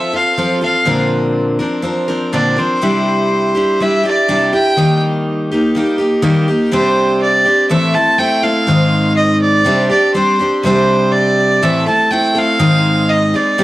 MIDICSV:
0, 0, Header, 1, 3, 480
1, 0, Start_track
1, 0, Tempo, 488998
1, 849, Time_signature, 4, 2, 24, 8
1, 13385, End_track
2, 0, Start_track
2, 0, Title_t, "Fiddle"
2, 0, Program_c, 0, 110
2, 0, Note_on_c, 0, 76, 90
2, 144, Note_off_c, 0, 76, 0
2, 155, Note_on_c, 0, 77, 93
2, 589, Note_off_c, 0, 77, 0
2, 624, Note_on_c, 0, 77, 88
2, 1062, Note_off_c, 0, 77, 0
2, 2288, Note_on_c, 0, 74, 75
2, 2544, Note_on_c, 0, 72, 83
2, 2558, Note_off_c, 0, 74, 0
2, 3750, Note_on_c, 0, 76, 90
2, 3765, Note_off_c, 0, 72, 0
2, 3975, Note_off_c, 0, 76, 0
2, 3993, Note_on_c, 0, 74, 87
2, 4423, Note_off_c, 0, 74, 0
2, 4460, Note_on_c, 0, 79, 101
2, 4896, Note_off_c, 0, 79, 0
2, 6604, Note_on_c, 0, 72, 92
2, 7048, Note_off_c, 0, 72, 0
2, 7089, Note_on_c, 0, 74, 91
2, 7531, Note_off_c, 0, 74, 0
2, 7560, Note_on_c, 0, 76, 96
2, 7796, Note_on_c, 0, 81, 102
2, 7811, Note_off_c, 0, 76, 0
2, 8034, Note_on_c, 0, 79, 102
2, 8049, Note_off_c, 0, 81, 0
2, 8278, Note_on_c, 0, 77, 99
2, 8293, Note_off_c, 0, 79, 0
2, 8991, Note_off_c, 0, 77, 0
2, 8997, Note_on_c, 0, 75, 95
2, 9222, Note_off_c, 0, 75, 0
2, 9244, Note_on_c, 0, 74, 90
2, 9690, Note_off_c, 0, 74, 0
2, 9722, Note_on_c, 0, 74, 97
2, 9946, Note_off_c, 0, 74, 0
2, 9956, Note_on_c, 0, 72, 88
2, 10295, Note_off_c, 0, 72, 0
2, 10431, Note_on_c, 0, 72, 93
2, 10913, Note_on_c, 0, 74, 95
2, 10928, Note_off_c, 0, 72, 0
2, 11415, Note_on_c, 0, 76, 90
2, 11430, Note_off_c, 0, 74, 0
2, 11652, Note_off_c, 0, 76, 0
2, 11659, Note_on_c, 0, 81, 96
2, 11887, Note_on_c, 0, 79, 96
2, 11901, Note_off_c, 0, 81, 0
2, 12154, Note_on_c, 0, 77, 109
2, 12169, Note_off_c, 0, 79, 0
2, 12853, Note_on_c, 0, 75, 96
2, 12868, Note_off_c, 0, 77, 0
2, 13111, Note_on_c, 0, 74, 86
2, 13126, Note_off_c, 0, 75, 0
2, 13385, Note_off_c, 0, 74, 0
2, 13385, End_track
3, 0, Start_track
3, 0, Title_t, "Steel-string acoustic guitar"
3, 0, Program_c, 1, 25
3, 0, Note_on_c, 1, 53, 52
3, 0, Note_on_c, 1, 60, 51
3, 0, Note_on_c, 1, 65, 60
3, 0, Note_on_c, 1, 69, 56
3, 117, Note_off_c, 1, 69, 0
3, 127, Note_off_c, 1, 65, 0
3, 128, Note_on_c, 1, 69, 50
3, 132, Note_off_c, 1, 53, 0
3, 136, Note_off_c, 1, 60, 0
3, 139, Note_on_c, 1, 65, 45
3, 150, Note_on_c, 1, 60, 40
3, 366, Note_off_c, 1, 60, 0
3, 366, Note_off_c, 1, 65, 0
3, 369, Note_off_c, 1, 69, 0
3, 369, Note_on_c, 1, 53, 65
3, 378, Note_on_c, 1, 60, 76
3, 378, Note_on_c, 1, 65, 73
3, 383, Note_on_c, 1, 69, 74
3, 588, Note_off_c, 1, 69, 0
3, 600, Note_off_c, 1, 65, 0
3, 600, Note_on_c, 1, 69, 52
3, 609, Note_off_c, 1, 53, 0
3, 612, Note_on_c, 1, 65, 49
3, 614, Note_off_c, 1, 60, 0
3, 624, Note_on_c, 1, 60, 43
3, 836, Note_on_c, 1, 46, 74
3, 840, Note_off_c, 1, 60, 0
3, 842, Note_on_c, 1, 50, 68
3, 844, Note_off_c, 1, 69, 0
3, 844, Note_on_c, 1, 53, 64
3, 850, Note_off_c, 1, 65, 0
3, 852, Note_on_c, 1, 60, 81
3, 855, Note_on_c, 1, 70, 78
3, 856, Note_on_c, 1, 62, 74
3, 1547, Note_off_c, 1, 70, 0
3, 1559, Note_on_c, 1, 70, 55
3, 1560, Note_off_c, 1, 46, 0
3, 1563, Note_off_c, 1, 50, 0
3, 1564, Note_off_c, 1, 53, 0
3, 1566, Note_off_c, 1, 62, 0
3, 1570, Note_on_c, 1, 62, 57
3, 1572, Note_off_c, 1, 60, 0
3, 1576, Note_on_c, 1, 60, 48
3, 1585, Note_on_c, 1, 53, 46
3, 1777, Note_off_c, 1, 53, 0
3, 1788, Note_off_c, 1, 60, 0
3, 1789, Note_on_c, 1, 53, 65
3, 1793, Note_off_c, 1, 62, 0
3, 1800, Note_on_c, 1, 60, 70
3, 1802, Note_off_c, 1, 70, 0
3, 1804, Note_on_c, 1, 62, 68
3, 1813, Note_on_c, 1, 70, 69
3, 2028, Note_off_c, 1, 70, 0
3, 2034, Note_off_c, 1, 62, 0
3, 2036, Note_off_c, 1, 53, 0
3, 2040, Note_on_c, 1, 70, 51
3, 2042, Note_off_c, 1, 60, 0
3, 2045, Note_on_c, 1, 62, 52
3, 2054, Note_on_c, 1, 60, 50
3, 2059, Note_on_c, 1, 53, 46
3, 2275, Note_off_c, 1, 53, 0
3, 2280, Note_off_c, 1, 62, 0
3, 2281, Note_off_c, 1, 60, 0
3, 2281, Note_off_c, 1, 70, 0
3, 2283, Note_on_c, 1, 46, 67
3, 2287, Note_on_c, 1, 50, 76
3, 2287, Note_on_c, 1, 53, 74
3, 2292, Note_on_c, 1, 60, 78
3, 2292, Note_on_c, 1, 62, 76
3, 2296, Note_on_c, 1, 70, 78
3, 2507, Note_off_c, 1, 70, 0
3, 2519, Note_off_c, 1, 62, 0
3, 2519, Note_on_c, 1, 70, 50
3, 2522, Note_off_c, 1, 46, 0
3, 2524, Note_off_c, 1, 53, 0
3, 2524, Note_off_c, 1, 60, 0
3, 2525, Note_off_c, 1, 50, 0
3, 2531, Note_on_c, 1, 62, 53
3, 2536, Note_on_c, 1, 60, 48
3, 2543, Note_on_c, 1, 53, 42
3, 2759, Note_off_c, 1, 62, 0
3, 2760, Note_off_c, 1, 70, 0
3, 2762, Note_on_c, 1, 48, 70
3, 2764, Note_off_c, 1, 53, 0
3, 2767, Note_off_c, 1, 60, 0
3, 2768, Note_on_c, 1, 55, 75
3, 2771, Note_on_c, 1, 62, 73
3, 2773, Note_on_c, 1, 64, 83
3, 2778, Note_on_c, 1, 67, 80
3, 3478, Note_off_c, 1, 67, 0
3, 3481, Note_off_c, 1, 48, 0
3, 3482, Note_on_c, 1, 67, 59
3, 3485, Note_off_c, 1, 62, 0
3, 3486, Note_off_c, 1, 64, 0
3, 3496, Note_on_c, 1, 64, 52
3, 3504, Note_on_c, 1, 62, 50
3, 3721, Note_off_c, 1, 67, 0
3, 3728, Note_off_c, 1, 62, 0
3, 3728, Note_off_c, 1, 64, 0
3, 3729, Note_off_c, 1, 55, 0
3, 3732, Note_on_c, 1, 55, 52
3, 3740, Note_on_c, 1, 62, 55
3, 3749, Note_on_c, 1, 64, 65
3, 3762, Note_on_c, 1, 67, 66
3, 3947, Note_off_c, 1, 67, 0
3, 3959, Note_on_c, 1, 67, 54
3, 3965, Note_off_c, 1, 64, 0
3, 3966, Note_off_c, 1, 55, 0
3, 3970, Note_off_c, 1, 62, 0
3, 3977, Note_on_c, 1, 64, 52
3, 3986, Note_on_c, 1, 62, 39
3, 4199, Note_off_c, 1, 62, 0
3, 4199, Note_off_c, 1, 67, 0
3, 4200, Note_off_c, 1, 64, 0
3, 4206, Note_on_c, 1, 48, 71
3, 4211, Note_on_c, 1, 55, 71
3, 4211, Note_on_c, 1, 62, 80
3, 4212, Note_on_c, 1, 64, 86
3, 4220, Note_on_c, 1, 67, 83
3, 4434, Note_off_c, 1, 67, 0
3, 4442, Note_off_c, 1, 48, 0
3, 4442, Note_off_c, 1, 64, 0
3, 4445, Note_off_c, 1, 55, 0
3, 4445, Note_off_c, 1, 62, 0
3, 4446, Note_on_c, 1, 67, 53
3, 4454, Note_on_c, 1, 64, 51
3, 4468, Note_on_c, 1, 62, 42
3, 4681, Note_on_c, 1, 51, 72
3, 4682, Note_off_c, 1, 67, 0
3, 4686, Note_off_c, 1, 64, 0
3, 4688, Note_on_c, 1, 55, 74
3, 4689, Note_off_c, 1, 62, 0
3, 4692, Note_on_c, 1, 58, 71
3, 4696, Note_on_c, 1, 63, 82
3, 4696, Note_on_c, 1, 67, 78
3, 5400, Note_off_c, 1, 51, 0
3, 5400, Note_off_c, 1, 67, 0
3, 5403, Note_off_c, 1, 55, 0
3, 5405, Note_off_c, 1, 58, 0
3, 5407, Note_off_c, 1, 63, 0
3, 5412, Note_on_c, 1, 67, 56
3, 5421, Note_on_c, 1, 63, 57
3, 5436, Note_on_c, 1, 58, 51
3, 5640, Note_on_c, 1, 55, 58
3, 5643, Note_off_c, 1, 58, 0
3, 5645, Note_off_c, 1, 67, 0
3, 5650, Note_off_c, 1, 63, 0
3, 5654, Note_on_c, 1, 58, 68
3, 5660, Note_on_c, 1, 63, 63
3, 5667, Note_on_c, 1, 67, 73
3, 5858, Note_off_c, 1, 67, 0
3, 5870, Note_on_c, 1, 67, 59
3, 5873, Note_off_c, 1, 63, 0
3, 5879, Note_off_c, 1, 55, 0
3, 5885, Note_on_c, 1, 63, 57
3, 5886, Note_off_c, 1, 58, 0
3, 5901, Note_on_c, 1, 58, 42
3, 6105, Note_off_c, 1, 58, 0
3, 6105, Note_off_c, 1, 63, 0
3, 6107, Note_on_c, 1, 51, 93
3, 6108, Note_on_c, 1, 55, 85
3, 6109, Note_off_c, 1, 67, 0
3, 6117, Note_on_c, 1, 58, 85
3, 6117, Note_on_c, 1, 63, 97
3, 6121, Note_on_c, 1, 67, 92
3, 6346, Note_off_c, 1, 67, 0
3, 6353, Note_off_c, 1, 51, 0
3, 6353, Note_off_c, 1, 55, 0
3, 6358, Note_off_c, 1, 58, 0
3, 6358, Note_off_c, 1, 63, 0
3, 6358, Note_on_c, 1, 67, 60
3, 6375, Note_on_c, 1, 63, 55
3, 6385, Note_on_c, 1, 58, 49
3, 6591, Note_on_c, 1, 48, 76
3, 6595, Note_on_c, 1, 55, 77
3, 6598, Note_off_c, 1, 67, 0
3, 6602, Note_off_c, 1, 58, 0
3, 6603, Note_off_c, 1, 63, 0
3, 6606, Note_on_c, 1, 60, 82
3, 6607, Note_on_c, 1, 62, 84
3, 6608, Note_on_c, 1, 67, 87
3, 7302, Note_off_c, 1, 67, 0
3, 7314, Note_on_c, 1, 67, 53
3, 7315, Note_off_c, 1, 48, 0
3, 7315, Note_off_c, 1, 62, 0
3, 7317, Note_off_c, 1, 55, 0
3, 7327, Note_on_c, 1, 62, 46
3, 7334, Note_off_c, 1, 60, 0
3, 7338, Note_on_c, 1, 60, 42
3, 7553, Note_on_c, 1, 45, 80
3, 7556, Note_off_c, 1, 60, 0
3, 7556, Note_off_c, 1, 67, 0
3, 7562, Note_on_c, 1, 52, 81
3, 7563, Note_off_c, 1, 62, 0
3, 7566, Note_on_c, 1, 57, 77
3, 7567, Note_on_c, 1, 60, 86
3, 7570, Note_on_c, 1, 64, 80
3, 7573, Note_on_c, 1, 69, 77
3, 7787, Note_off_c, 1, 69, 0
3, 7793, Note_off_c, 1, 64, 0
3, 7796, Note_off_c, 1, 45, 0
3, 7798, Note_on_c, 1, 69, 49
3, 7800, Note_off_c, 1, 52, 0
3, 7803, Note_off_c, 1, 57, 0
3, 7803, Note_off_c, 1, 60, 0
3, 7804, Note_on_c, 1, 64, 53
3, 7814, Note_on_c, 1, 60, 45
3, 7821, Note_on_c, 1, 57, 43
3, 8018, Note_off_c, 1, 57, 0
3, 8028, Note_off_c, 1, 60, 0
3, 8029, Note_on_c, 1, 57, 66
3, 8036, Note_off_c, 1, 64, 0
3, 8039, Note_off_c, 1, 69, 0
3, 8040, Note_on_c, 1, 60, 61
3, 8048, Note_on_c, 1, 64, 62
3, 8051, Note_on_c, 1, 69, 63
3, 8254, Note_off_c, 1, 69, 0
3, 8265, Note_off_c, 1, 64, 0
3, 8266, Note_on_c, 1, 69, 55
3, 8270, Note_off_c, 1, 60, 0
3, 8275, Note_off_c, 1, 57, 0
3, 8277, Note_on_c, 1, 64, 46
3, 8282, Note_on_c, 1, 60, 46
3, 8292, Note_on_c, 1, 57, 42
3, 8508, Note_on_c, 1, 44, 74
3, 8513, Note_off_c, 1, 69, 0
3, 8516, Note_on_c, 1, 51, 80
3, 8518, Note_off_c, 1, 57, 0
3, 8519, Note_off_c, 1, 64, 0
3, 8521, Note_off_c, 1, 60, 0
3, 8522, Note_on_c, 1, 56, 79
3, 8531, Note_on_c, 1, 60, 78
3, 8542, Note_on_c, 1, 63, 85
3, 8547, Note_on_c, 1, 68, 78
3, 9462, Note_off_c, 1, 51, 0
3, 9466, Note_on_c, 1, 48, 71
3, 9473, Note_off_c, 1, 56, 0
3, 9474, Note_off_c, 1, 60, 0
3, 9476, Note_off_c, 1, 44, 0
3, 9477, Note_off_c, 1, 63, 0
3, 9477, Note_on_c, 1, 55, 78
3, 9478, Note_on_c, 1, 60, 83
3, 9481, Note_on_c, 1, 62, 89
3, 9487, Note_off_c, 1, 68, 0
3, 9491, Note_on_c, 1, 67, 86
3, 9702, Note_off_c, 1, 67, 0
3, 9712, Note_off_c, 1, 62, 0
3, 9714, Note_off_c, 1, 48, 0
3, 9714, Note_on_c, 1, 67, 56
3, 9720, Note_off_c, 1, 55, 0
3, 9720, Note_off_c, 1, 60, 0
3, 9724, Note_on_c, 1, 62, 44
3, 9734, Note_on_c, 1, 60, 46
3, 9951, Note_off_c, 1, 60, 0
3, 9957, Note_on_c, 1, 55, 58
3, 9958, Note_off_c, 1, 67, 0
3, 9963, Note_on_c, 1, 60, 69
3, 9964, Note_off_c, 1, 62, 0
3, 9977, Note_on_c, 1, 62, 67
3, 9980, Note_on_c, 1, 67, 67
3, 10191, Note_off_c, 1, 67, 0
3, 10200, Note_off_c, 1, 55, 0
3, 10203, Note_off_c, 1, 60, 0
3, 10203, Note_off_c, 1, 62, 0
3, 10203, Note_on_c, 1, 67, 53
3, 10215, Note_on_c, 1, 62, 45
3, 10226, Note_on_c, 1, 60, 45
3, 10438, Note_on_c, 1, 48, 74
3, 10444, Note_off_c, 1, 67, 0
3, 10450, Note_off_c, 1, 60, 0
3, 10450, Note_off_c, 1, 62, 0
3, 10451, Note_on_c, 1, 55, 80
3, 10462, Note_on_c, 1, 60, 90
3, 10469, Note_on_c, 1, 62, 90
3, 10477, Note_on_c, 1, 67, 90
3, 11404, Note_off_c, 1, 48, 0
3, 11411, Note_off_c, 1, 55, 0
3, 11411, Note_on_c, 1, 45, 78
3, 11413, Note_on_c, 1, 52, 74
3, 11416, Note_off_c, 1, 60, 0
3, 11416, Note_on_c, 1, 57, 73
3, 11418, Note_off_c, 1, 67, 0
3, 11419, Note_on_c, 1, 60, 84
3, 11420, Note_off_c, 1, 62, 0
3, 11422, Note_on_c, 1, 69, 80
3, 11424, Note_on_c, 1, 64, 80
3, 11634, Note_off_c, 1, 69, 0
3, 11645, Note_off_c, 1, 64, 0
3, 11646, Note_on_c, 1, 69, 51
3, 11650, Note_off_c, 1, 45, 0
3, 11651, Note_off_c, 1, 52, 0
3, 11652, Note_off_c, 1, 60, 0
3, 11653, Note_off_c, 1, 57, 0
3, 11657, Note_on_c, 1, 64, 48
3, 11664, Note_on_c, 1, 60, 46
3, 11672, Note_on_c, 1, 57, 41
3, 11871, Note_off_c, 1, 57, 0
3, 11882, Note_off_c, 1, 60, 0
3, 11883, Note_on_c, 1, 57, 59
3, 11888, Note_off_c, 1, 69, 0
3, 11893, Note_off_c, 1, 64, 0
3, 11894, Note_on_c, 1, 60, 61
3, 11906, Note_on_c, 1, 64, 64
3, 11910, Note_on_c, 1, 69, 75
3, 12105, Note_off_c, 1, 69, 0
3, 12114, Note_off_c, 1, 64, 0
3, 12117, Note_on_c, 1, 69, 48
3, 12121, Note_off_c, 1, 60, 0
3, 12125, Note_on_c, 1, 64, 49
3, 12127, Note_off_c, 1, 57, 0
3, 12133, Note_on_c, 1, 60, 46
3, 12141, Note_on_c, 1, 57, 41
3, 12355, Note_off_c, 1, 60, 0
3, 12360, Note_off_c, 1, 57, 0
3, 12360, Note_on_c, 1, 44, 77
3, 12362, Note_on_c, 1, 51, 85
3, 12364, Note_on_c, 1, 56, 83
3, 12365, Note_off_c, 1, 69, 0
3, 12367, Note_on_c, 1, 60, 85
3, 12369, Note_off_c, 1, 64, 0
3, 12374, Note_on_c, 1, 63, 83
3, 12375, Note_on_c, 1, 68, 81
3, 13082, Note_off_c, 1, 68, 0
3, 13089, Note_off_c, 1, 44, 0
3, 13090, Note_off_c, 1, 51, 0
3, 13091, Note_off_c, 1, 56, 0
3, 13093, Note_off_c, 1, 63, 0
3, 13094, Note_on_c, 1, 68, 52
3, 13105, Note_on_c, 1, 63, 49
3, 13110, Note_off_c, 1, 60, 0
3, 13114, Note_on_c, 1, 60, 46
3, 13118, Note_on_c, 1, 56, 37
3, 13327, Note_off_c, 1, 60, 0
3, 13331, Note_on_c, 1, 48, 79
3, 13332, Note_off_c, 1, 56, 0
3, 13335, Note_off_c, 1, 68, 0
3, 13336, Note_on_c, 1, 55, 79
3, 13339, Note_on_c, 1, 60, 86
3, 13341, Note_off_c, 1, 63, 0
3, 13347, Note_on_c, 1, 62, 80
3, 13352, Note_on_c, 1, 67, 83
3, 13385, Note_off_c, 1, 48, 0
3, 13385, Note_off_c, 1, 55, 0
3, 13385, Note_off_c, 1, 60, 0
3, 13385, Note_off_c, 1, 62, 0
3, 13385, Note_off_c, 1, 67, 0
3, 13385, End_track
0, 0, End_of_file